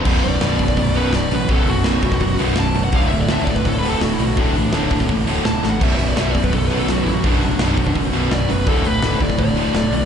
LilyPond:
<<
  \new Staff \with { instrumentName = "Lead electric guitar" } { \time 4/4 \key b \minor \tempo 4 = 167 r8 d''2 b'8 d''8 b'8 | a'8 fis'2 r8 \tuplet 3/2 { a''4 fis''8 } | \tuplet 3/2 { eis''8 e''8 d''8 e''8 d''8 b'8 a'8 b'8 a'8 fis'8 e'8 fis'8 } | d'2 r4 \tuplet 3/2 { a''4 fis''8 } |
\tuplet 3/2 { e''8 e''8 d''8 e''8 d''8 b'8 a'8 b'8 a'8 fis'8 e'8 fis'8 } | d'2 r4 d''8 b'8 | a'8 b'4 d''8 d''2 | }
  \new Staff \with { instrumentName = "Distorted electric guitar" } { \clef bass \time 4/4 \key b \minor <b,, fis, b,>8 <b,, fis,>8 <b,, fis, b,>8 <b,, fis,>8 <b,, fis,>8 <b,, fis, b,>8 <b,, fis,>8 <b,, fis,>8 | <b,, fis, b,>8 <b,, fis,>8 <b,, fis, b,>8 <b,, fis,>8 <b,, fis,>8 <b,, fis, b,>8 <b,, fis,>8 <b,, fis,>8 | <d, a, d>8 <d, a,>8 <d, a, d>8 <d, a,>8 <d, a,>8 <d, a, d>8 <d, a,>8 <d, a,>8 | <d, a, d>8 <d, a,>8 <d, a, d>8 <d, a,>8 <d, a,>8 <d, a, d>8 <d, a,>8 <d, a,>8 |
<b,, fis, b,>8 <b,, fis,>8 <b,, fis, b,>8 <b,, fis,>8 <b,, fis,>8 <b,, fis, b,>8 <b,, fis,>8 <b,, fis,>8 | <b,, fis, b,>8 <b,, fis,>8 <b,, fis, b,>8 <b,, fis,>8 <b,, fis,>8 <b,, fis, b,>8 <b,, fis,>8 <b,, fis,>8 | <d, a, d>8 <d, a,>8 <d, a, d>8 <d, a,>8 <d, a,>8 <d, a, d>8 <d, a,>8 <d, a,>8 | }
  \new Staff \with { instrumentName = "Distorted electric guitar" } { \clef bass \time 4/4 \key b \minor <b,, fis, b,>8 <b,, fis,>8 <b,, fis, b,>8 <b,, fis,>8 <b,, fis,>8 <b,, fis, b,>8 <b,, fis,>8 <b,, fis,>8 | <b,, fis, b,>8 <b,, fis,>8 <b,, fis, b,>8 <b,, fis,>8 <b,, fis,>8 <b,, fis, b,>8 <b,, fis,>8 <b,, fis,>8 | <d, a, d>8 <d, a,>8 <d, a, d>8 <d, a,>8 <d, a,>8 <d, a, d>8 <d, a,>8 <d, a,>8 | <d, a, d>8 <d, a,>8 <d, a, d>8 <d, a,>8 <d, a,>8 <d, a, d>8 <d, a,>8 <d, a,>8 |
<b,, fis, b,>8 <b,, fis,>8 <b,, fis, b,>8 <b,, fis,>8 <b,, fis,>8 <b,, fis, b,>8 <b,, fis,>8 <b,, fis,>8 | <b,, fis, b,>8 <b,, fis,>8 <b,, fis, b,>8 <b,, fis,>8 <b,, fis,>8 <b,, fis, b,>8 <b,, fis,>8 <b,, fis,>8 | <d, a, d>8 <d, a,>8 <d, a, d>8 <d, a,>8 <d, a,>8 <d, a, d>8 <d, a,>8 <d, a,>8 | }
  \new Staff \with { instrumentName = "Distorted electric guitar" } { \clef bass \time 4/4 \key b \minor <b,, fis, b,>4. <b,, fis, b,>4. <b,, fis, b,>4 | <b,, fis, b,>4. <b,, fis, b,>4. <b,, fis, b,>4 | <d, a, d>4. <d, a, d>4. <d, a, d>4 | <d, a, d>4. <d, a, d>4. <d, a, d>4 |
<b,, fis, b,>4. <b,, fis, b,>4. <b,, fis, b,>4 | <b,, fis, b,>4. <b,, fis, b,>4. <b,, fis, b,>4 | <d, a, d>4. <d, a, d>4. <d, a, d>4 | }
  \new Staff \with { instrumentName = "Picked electric bass" } { \clef bass \time 4/4 \key b \minor b,,,8 b,,,8 b,,,8 b,,,8 b,,,4 b,,,8 a,,8 | b,,,8 fis,,8 b,,,4 fis,,8 b,,,8 b,,,8 fis,,8 | d,,8 d,,8 d,,8 d,,8 d,,4 d,,8 b,,8 | d,,8 a,,8 d,,4 a,,8 d,,8 d,,8 a,,8 |
b,,,8 b,,,8 b,,,8 b,,,8 b,,,4 b,,,8 a,,8 | b,,,8 fis,,8 b,,,4 fis,,8 b,,,8 b,,,8 fis,,8 | d,,8 d,,8 d,,8 d,,8 d,,4 d,,8 b,,8 | }
  \new DrumStaff \with { instrumentName = "Drums" } \drummode { \time 4/4 <cymc bd>8 hho8 <hho sn>8 <hho bd>16 <bd sn>16 <hho bd>8 hho8 <hho sn>8 hho8 | <hho bd>8 hho8 <hho sn>8 <hho bd>16 <bd sn>16 <hho bd>8 hho8 <hho sn>8 hho8 | <hho bd>8 hho8 <hho sn>8 <hho bd>16 <bd sn>16 <hho bd>8 hho8 <hho sn>8 hho8 | <hho bd>8 hho8 <hho sn>8 <hho bd>16 <bd sn>16 <hho bd>8 hho8 <hho sn>8 sn8 |
<cymc hho bd>8 hho8 sn8 <hho bd>16 bd16 <hho bd>8 hho8 <hho sn>8 hho8 | <hho bd>8 hho8 <hho sn>8 <hho bd>16 bd16 <hho bd>8 hho8 <hho sn>8 hho8 | <hho bd>8 hho8 <hho sn>8 <hho bd>16 <bd sn>16 <hho bd>8 hho8 <hho sn>8 hho8 | }
>>